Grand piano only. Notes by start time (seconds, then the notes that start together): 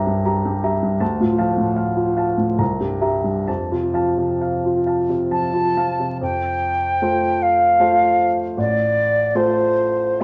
Already playing: C2 G2 G3 G4 E5 A#5
0.07 G2
0.26 G3 A#5
0.45 G2 G4
0.63 G3 E5 A#5
0.82 G2
1.00 D2 A5
1.20 A2 F4
1.38 F3 F5 A5
1.57 A2
1.77 F5
1.97 F4
2.17 F5 A5
2.38 A2
2.58 C2 A#5
2.80 G2 G4
3.01 G3 E5 A#5
3.24 G2
3.48 F2 A5
3.72 C3 F4
3.94 F3 F5 A5
4.17 C3
4.41 F5
4.65 F4
4.86 F5 A5
5.09 C3
5.31 F3 A5
5.53 C3 F4
5.77 F3 F5 A5
5.99 C3
6.21 F2
7.02 A3 F4 C5
7.80 A3 F4 C5
8.57 A1
9.35 A3 F4 C5